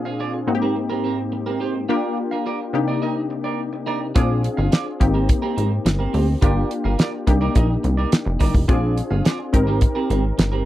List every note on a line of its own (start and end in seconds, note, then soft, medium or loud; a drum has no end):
0.00 0.48 A#2 medium
0.00 0.46 C4 medium
0.00 0.48 D4 medium
0.00 0.48 F4 medium
0.00 0.48 G#4 medium
0.05 0.18 F4 soft
0.05 0.19 G#4 medium
0.05 0.20 F5 medium
0.19 0.38 F4 medium
0.19 0.33 G#4 medium
0.19 0.32 D5 medium
0.34 muted clean electric guitar stroke soft
0.47 1.86 G#2 medium
0.47 1.86 A#3 medium
0.47 1.86 C4 medium
0.47 1.87 D#4 medium
0.47 0.55 F#4 medium
0.47 muted clean electric guitar stroke soft
0.55 1.89 G4 medium
0.62 0.75 C4 medium
0.62 0.75 G4 medium
0.62 0.76 A#4 medium
0.76 muted clean electric guitar stroke soft
0.90 1.03 C4 medium
0.90 1.03 G4 medium
0.90 1.04 A#4 medium
1.04 1.19 C4 medium
1.04 1.18 G4 medium
1.04 1.17 A#4 medium
1.18 muted clean electric guitar stroke medium
1.32 muted clean electric guitar stroke soft
1.46 1.59 C4 medium
1.46 1.60 G4 medium
1.46 1.61 A#4 medium
1.60 1.80 C4 medium
1.60 1.74 G4 medium
1.60 1.74 C5 medium
1.75 muted clean electric guitar stroke soft
1.89 2.73 A#3 medium
1.89 2.73 D4 medium
1.89 2.15 F4 medium
1.89 2.74 F4 medium
1.89 2.74 G4 medium
1.89 2.16 A#4 medium
1.89 2.16 D5 medium
2.17 muted clean electric guitar stroke soft
2.31 2.44 F4 soft
2.31 2.45 A#4 medium
2.31 2.46 F5 medium
2.46 2.65 F4 medium
2.46 2.60 A#4 medium
2.46 2.59 D5 medium
2.60 muted clean electric guitar stroke soft
2.73 4.12 C3 medium
2.73 4.13 A#3 medium
2.73 4.13 D4 medium
2.73 4.13 D#4 medium
2.73 4.13 G4 medium
2.73 muted clean electric guitar stroke soft
2.88 3.01 D#4 soft
2.88 3.01 A#4 medium
2.88 3.03 D5 medium
3.02 3.21 D#4 medium
3.02 3.16 A#4 medium
3.02 3.16 D#5 medium
3.16 muted clean electric guitar stroke soft
3.30 muted clean electric guitar stroke soft
3.44 3.60 D#4 soft
3.44 3.60 A#4 medium
3.44 3.59 D5 medium
3.73 muted clean electric guitar stroke soft
3.86 4.06 D#4 medium
3.86 4.01 A#4 medium
3.86 4.00 D5 loud
4.01 muted clean electric guitar stroke soft
4.15 4.49 A#1 loud
4.15 4.99 C4 medium
4.15 5.01 D4 medium
4.15 4.41 F4 medium
4.15 5.01 F4 medium
4.15 4.42 G#4 medium
4.15 5.01 G#4 medium
4.15 4.42 D5 medium
4.15 kick loud
4.15 closed hi-hat medium
4.43 muted clean electric guitar stroke soft
4.43 closed hi-hat medium
4.57 4.69 G1 loud
4.57 4.70 F4 medium
4.57 4.71 G#4 medium
4.57 4.73 F5 medium
4.72 4.91 F4 medium
4.72 4.86 G#4 medium
4.72 4.85 D5 medium
4.72 snare loud
4.72 closed hi-hat medium
4.86 muted clean electric guitar stroke soft
5.00 5.34 G#1 loud
5.00 6.39 A#3 medium
5.00 6.39 C4 medium
5.00 6.40 D#4 medium
5.00 6.40 G4 medium
5.00 muted clean electric guitar stroke soft
5.00 kick loud
5.00 closed hi-hat medium
5.14 5.27 C4 medium
5.14 5.28 G4 medium
5.14 5.28 A#4 medium
5.28 muted clean electric guitar stroke soft
5.28 kick medium
5.28 closed hi-hat medium
5.42 5.55 C4 medium
5.42 5.56 G4 medium
5.42 5.56 A#4 medium
5.56 5.79 G#1 medium
5.56 5.72 C4 medium
5.56 5.71 G4 medium
5.56 5.70 A#4 medium
5.56 closed hi-hat medium
5.71 muted clean electric guitar stroke soft
5.85 6.08 G1 medium
5.85 muted clean electric guitar stroke medium
5.85 snare loud
5.85 closed hi-hat loud
5.99 6.12 C4 medium
5.99 6.13 G4 medium
5.99 6.14 A#4 medium
6.13 6.36 D2 loud
6.13 6.32 C4 medium
6.13 6.27 G4 medium
6.13 6.27 C5 medium
6.13 open hi-hat medium
6.27 muted clean electric guitar stroke soft
6.41 6.64 G1 loud
6.41 7.26 A#3 medium
6.41 7.26 D4 medium
6.41 6.68 F4 medium
6.41 7.27 F4 medium
6.41 7.27 G4 medium
6.41 6.68 A#4 medium
6.41 6.69 D5 medium
6.41 kick loud
6.41 closed hi-hat medium
6.70 muted clean electric guitar stroke soft
6.70 closed hi-hat medium
6.84 6.96 G1 medium
6.84 6.97 F4 medium
6.84 6.98 A#4 medium
6.84 6.99 F5 medium
6.98 7.18 F4 medium
6.98 7.12 A#4 medium
6.98 7.11 D5 medium
6.98 snare loud
6.98 closed hi-hat medium
7.12 muted clean electric guitar stroke soft
7.27 7.49 C2 loud
7.27 8.66 A#3 medium
7.27 8.66 D4 medium
7.27 8.66 D#4 medium
7.27 8.66 G4 medium
7.27 muted clean electric guitar stroke soft
7.27 kick medium
7.27 closed hi-hat medium
7.41 7.54 D#4 medium
7.41 7.54 A#4 medium
7.41 7.56 D5 medium
7.55 7.77 A#1 medium
7.55 7.74 D#4 medium
7.55 7.69 A#4 medium
7.55 7.69 D#5 medium
7.55 kick medium
7.55 closed hi-hat medium
7.69 muted clean electric guitar stroke soft
7.83 8.06 C2 medium
7.83 muted clean electric guitar stroke soft
7.83 closed hi-hat medium
7.97 8.10 D#4 soft
7.97 8.11 A#4 medium
7.97 8.12 D5 medium
8.12 muted clean electric guitar stroke soft
8.12 snare loud
8.12 closed hi-hat loud
8.25 8.37 F1 loud
8.25 muted clean electric guitar stroke medium
8.39 8.52 G1 medium
8.39 8.59 D#4 medium
8.39 8.54 A#4 medium
8.39 8.53 D5 medium
8.39 kick medium
8.39 open hi-hat medium
8.54 8.66 F1 medium
8.54 muted clean electric guitar stroke medium
8.54 kick medium
8.68 9.02 A#1 loud
8.68 9.52 C4 medium
8.68 9.54 D4 medium
8.68 8.94 F4 medium
8.68 9.54 F4 medium
8.68 8.95 G#4 medium
8.68 9.54 G#4 medium
8.68 8.95 D5 medium
8.68 kick loud
8.68 closed hi-hat medium
8.97 muted clean electric guitar stroke soft
8.97 closed hi-hat medium
9.11 9.22 G1 medium
9.11 9.23 F4 soft
9.11 9.24 G#4 medium
9.11 9.26 F5 medium
9.25 9.44 F4 medium
9.25 9.39 G#4 medium
9.25 9.38 D5 medium
9.25 snare loud
9.25 closed hi-hat medium
9.39 muted clean electric guitar stroke soft
9.53 9.86 G#1 medium
9.53 10.65 C4 medium
9.53 10.65 D#4 medium
9.53 10.65 G4 medium
9.53 10.65 A#4 medium
9.53 muted clean electric guitar stroke soft
9.53 kick medium
9.53 closed hi-hat medium
9.67 9.80 C4 medium
9.67 9.80 G4 medium
9.67 9.81 A#4 medium
9.81 muted clean electric guitar stroke soft
9.81 kick loud
9.81 closed hi-hat medium
9.95 10.08 C4 medium
9.95 10.09 G4 medium
9.95 10.10 A#4 medium
10.10 10.32 G#1 loud
10.10 10.25 C4 medium
10.10 10.24 G4 medium
10.10 10.23 A#4 medium
10.10 closed hi-hat medium
10.24 muted clean electric guitar stroke soft
10.38 10.65 G1 medium
10.38 muted clean electric guitar stroke soft
10.38 snare loud
10.38 closed hi-hat loud
10.52 10.65 C4 medium
10.52 10.65 G4 medium
10.52 10.65 A#4 medium